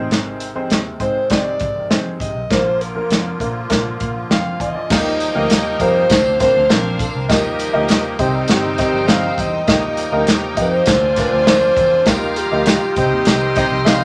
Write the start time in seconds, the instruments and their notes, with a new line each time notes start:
Already playing: upright piano G#2 C4 D#4 G#4 C5, accordion C3 D#3 G#3 C4
0.10 fingered electric bass G#1, snare, closed hi-hat, low conga
0.40 closed hi-hat
0.55 upright piano C4 D#4 G#4 C5, high conga
0.70 fingered electric bass D#2, snare, closed hi-hat
0.84 muted conga
1.00 fingered electric bass G#2, upright piano C4 D#4 G#4 C5, alto saxophone C5, kick, closed hi-hat
1.30 upright piano C4 D#4 G#4 C5, alto saxophone D5, kick, snare, closed hi-hat
1.46 muted conga
1.60 fingered electric bass G#1, kick, closed hi-hat
1.75 high conga
1.90 upright piano C4 D#4 G#4 C5, snare, closed hi-hat, muted conga, high conga
2.05 muted conga, high conga
2.20 fingered electric bass G#1, alto saxophone D#5, kick, closed hi-hat, low conga
2.35 fingered electric bass B1
2.50 fingered electric bass A#1, upright piano A#2 A#3 D4 F4 A#4, accordion D3 F3 A#3 F4, alto saxophone C5, kick, snare, closed hi-hat, low conga
2.65 muted conga
2.81 alto saxophone A#4, closed hi-hat
2.95 upright piano A#3 D4 F4 A#4, high conga
3.10 fingered electric bass F2, snare, closed hi-hat
3.25 muted conga
3.40 fingered electric bass A#2, upright piano A#3 D4 F4 A#4, kick, closed hi-hat
3.70 fingered electric bass A#2, upright piano A#3 D4 F4 A#4, kick, snare, closed hi-hat
3.86 muted conga
4.00 fingered electric bass A#2, upright piano F5, kick, closed hi-hat
4.14 high conga
4.30 fingered electric bass F2, alto saxophone F5, upright piano G5, snare, closed hi-hat, muted conga, high conga
4.44 upright piano G5, high conga
4.60 fingered electric bass E2, alto saxophone D#5, upright piano F5 G#5, kick, closed hi-hat, low conga
4.75 upright piano D5
4.89 fingered electric bass D#2, upright piano D#3 A#3 D#4 F4 G4 A#4, accordion F3 G3 A#3 D#4, violin section D#4 A#4 G5, kick, snare, crash, tambourine, low conga
5.05 muted conga
5.20 closed hi-hat, tambourine
5.35 fingered electric bass D2, upright piano A#3 D#4 F4 G4 A#4, high conga
5.50 fingered electric bass D#2, snare, closed hi-hat, tambourine, muted conga
5.79 fingered electric bass F2, upright piano A#3 D#4 F4 G4 A#4, alto saxophone C5, kick, closed hi-hat, tambourine
6.10 fingered electric bass D2, upright piano D3, accordion A#3 C4 D4, violin section D4 C5 F5, kick, snare, closed hi-hat, tambourine
6.25 muted conga
6.39 upright piano C4 D4 F4 A#4 C5, alto saxophone C5, kick, snare, closed hi-hat, tambourine
6.54 fingered electric bass D2, high conga
6.69 fingered electric bass A#1, upright piano C4 D4 F4 A#4 C5, alto saxophone A#4, snare, closed hi-hat, tambourine, muted conga, high conga
6.84 high conga
6.99 alto saxophone A#4, kick, closed hi-hat, tambourine, low conga
7.15 fingered electric bass C2
7.29 fingered electric bass D#2, upright piano D#3 D#4 F4 G4 A#4 D#5, accordion F3 G3 D#4, violin section A#3 G4 D#5, kick, snare, closed hi-hat, tambourine, muted conga, low conga
7.44 muted conga
7.59 closed hi-hat, tambourine
7.73 fingered electric bass D2, upright piano D#4 F4 G4 A#4 D#5, high conga
7.88 fingered electric bass D#2, snare, closed hi-hat, tambourine
8.03 muted conga
8.18 fingered electric bass C2, upright piano C3 C4 D#4 G4 C5 D#5, accordion D#3 C4 D#4, violin section D#4 C5 G5, alto saxophone G4, kick, closed hi-hat, tambourine
8.47 fingered electric bass G1, alto saxophone G4, snare, closed hi-hat, tambourine
8.78 upright piano C4 D#4 G4 C5 D#5, kick, snare, closed hi-hat, tambourine
8.93 fingered electric bass G1, high conga
9.08 upright piano C4 D#4 G4 C5 D#5, alto saxophone F5, snare, closed hi-hat, tambourine, muted conga, high conga
9.23 high conga
9.38 fingered electric bass E2, alto saxophone D#5, kick, closed hi-hat, tambourine, low conga
9.66 fingered electric bass D#2, upright piano D#3 D#4 F4 G4 A#4 D#5, accordion F3 A#3, violin section D#4 A#4 G5, kick, snare, closed hi-hat, tambourine, low conga
9.84 muted conga
9.97 closed hi-hat, tambourine
10.12 fingered electric bass D2, upright piano D#4 F4 G4 A#4 D#5, high conga
10.27 fingered electric bass D#2, snare, closed hi-hat, tambourine
10.57 fingered electric bass F2, upright piano D#4 F4 G4 A#4 D#5, kick, closed hi-hat, tambourine
10.61 alto saxophone C5
10.86 fingered electric bass D2, upright piano D3, accordion C4 D4 F4, violin section F4 D5 G#5, kick, snare, closed hi-hat, tambourine
11.16 upright piano D4 F4 A#4 C5 D5, alto saxophone C5, kick, snare, closed hi-hat, tambourine
11.32 fingered electric bass D2, high conga
11.47 upright piano D4 F4 A#4 C5 D5, snare, closed hi-hat, tambourine, muted conga, high conga
11.61 high conga
11.77 fingered electric bass E2, kick, closed hi-hat, tambourine, low conga
12.06 fingered electric bass D#2, accordion G3 D#4, upright piano D#4 F4 G4 A#4 D#5, violin section G4 F5 A#5, alto saxophone A#4, kick, snare, closed hi-hat, tambourine, low conga
12.22 muted conga
12.36 alto saxophone G4, closed hi-hat, tambourine
12.51 fingered electric bass D2, upright piano D#4 F4 G4 A#4 D#5, high conga
12.65 snare, closed hi-hat, tambourine, muted conga
12.96 fingered electric bass C2, upright piano C3 C4 D#4 G4 C5 D#5, accordion D#3 C4 D#4, violin section G4 D#5 C6, kick, closed hi-hat, tambourine
13.12 fingered electric bass D#2
13.25 fingered electric bass C2, snare, closed hi-hat, tambourine
13.41 muted conga
13.55 saxophone section C3 G3 D#4, upright piano C4 D#4 G4 C5 D#5, kick, snare, closed hi-hat, tambourine
13.70 fingered electric bass C2, high conga
13.85 saxophone section C3 G3 D#4, upright piano C4 D#4 G4 C5 D#5, alto saxophone F5, snare, closed hi-hat, tambourine, muted conga, high conga
14.01 muted conga, high conga